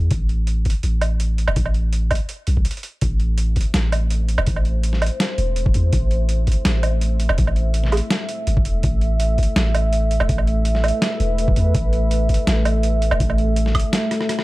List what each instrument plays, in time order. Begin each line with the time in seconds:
0.11 808-style bass A1, kick, closed hi-hat
0.29 closed hi-hat
0.47 closed hi-hat
0.65 kick, closed hi-hat
0.70 closed hi-hat
0.83 808-style bass A1, closed hi-hat
1.01 closed hi-hat, low woodblock
1.20 closed hi-hat
1.38 closed hi-hat
1.48 808-style bass E1, low woodblock
1.56 808-style bass A1, kick, closed hi-hat
1.66 low woodblock
1.74 closed hi-hat
1.93 closed hi-hat
2.11 kick, closed hi-hat, low woodblock
2.15 closed hi-hat
2.29 closed hi-hat
2.47 808-style bass B1, closed hi-hat
2.57 kick
2.65 closed hi-hat
2.71 closed hi-hat
2.77 closed hi-hat
2.83 closed hi-hat
3.01 808-style bass A1, analog synth pad A3, kick, closed hi-hat
3.13 analog synth pad A4 E5
3.20 closed hi-hat
3.32 analog synth pad C5
3.38 closed hi-hat
3.56 kick, closed hi-hat
3.61 closed hi-hat
3.74 808-style bass A1, snare, closed hi-hat
3.92 closed hi-hat, low woodblock
4.10 closed hi-hat
4.29 closed hi-hat
4.38 808-style bass E1, low woodblock
4.47 808-style bass A1, kick, closed hi-hat
4.56 low woodblock
4.65 closed hi-hat
4.83 closed hi-hat
4.93 snare
5.02 closed hi-hat, low woodblock
5.06 closed hi-hat
5.20 snare, closed hi-hat
5.38 808-style bass E1, closed hi-hat
5.56 closed hi-hat
5.66 kick
5.74 808-style bass E2, closed hi-hat
5.93 808-style bass A1, kick, closed hi-hat
6.11 closed hi-hat
6.29 closed hi-hat
6.47 kick, closed hi-hat
6.52 closed hi-hat
6.65 808-style bass A1, snare, closed hi-hat
6.83 closed hi-hat, low woodblock
7.01 closed hi-hat
7.20 closed hi-hat
7.29 808-style bass E1, low woodblock
7.38 808-style bass A1, kick, closed hi-hat
7.47 low woodblock
7.56 closed hi-hat
7.74 closed hi-hat
7.84 snare
7.92 closed hi-hat, low woodblock
7.97 closed hi-hat
8.11 snare, closed hi-hat
8.29 closed hi-hat
8.47 808-style bass G1, closed hi-hat
8.57 kick
8.65 808-style bass E1, closed hi-hat
8.83 808-style bass A1, kick, closed hi-hat
9.01 closed hi-hat
9.20 closed hi-hat
9.38 kick, closed hi-hat
9.43 closed hi-hat
9.56 808-style bass A1, snare, closed hi-hat
9.75 closed hi-hat, low woodblock
9.93 closed hi-hat
10.11 closed hi-hat
10.20 808-style bass E1, low woodblock
10.29 808-style bass A1, kick, closed hi-hat
10.38 low woodblock
10.46 analog synth pad B4, closed hi-hat
10.65 closed hi-hat
10.75 snare
10.84 closed hi-hat, low woodblock
10.88 closed hi-hat
11.02 snare, closed hi-hat
11.20 808-style bass E1, closed hi-hat
11.38 closed hi-hat
11.48 kick
11.56 808-style bass E2, closed hi-hat
11.75 808-style bass A1, kick, closed hi-hat
11.93 closed hi-hat
12.11 closed hi-hat
12.29 kick, closed hi-hat
12.34 closed hi-hat
12.47 808-style bass A1, snare, closed hi-hat
12.65 closed hi-hat, low woodblock
12.83 closed hi-hat
13.02 closed hi-hat
13.11 808-style bass E1, low woodblock
13.20 808-style bass A1, kick, closed hi-hat
13.30 low woodblock
13.38 closed hi-hat
13.56 closed hi-hat
13.66 snare
13.75 kick, closed hi-hat, low woodblock
13.80 closed hi-hat
13.93 snare, closed hi-hat
14.11 cross-stick, closed hi-hat
14.21 cross-stick
14.29 cross-stick, closed hi-hat
14.39 cross-stick